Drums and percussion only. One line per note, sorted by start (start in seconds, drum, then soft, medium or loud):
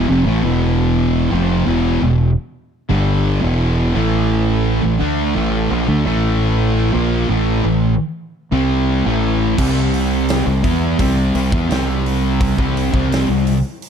9.58 kick loud
9.58 crash loud
9.94 open hi-hat medium
10.29 snare loud
10.29 open hi-hat medium
10.64 kick loud
10.64 open hi-hat medium
10.99 kick loud
10.99 open hi-hat medium
11.35 open hi-hat medium
11.52 kick loud
11.70 snare loud
11.70 open hi-hat medium
12.06 open hi-hat medium
12.41 kick loud
12.41 open hi-hat medium
12.58 kick loud
12.77 open hi-hat medium
12.94 kick loud
13.12 snare loud
13.12 open hi-hat loud
13.47 open hi-hat medium
13.82 open hi-hat medium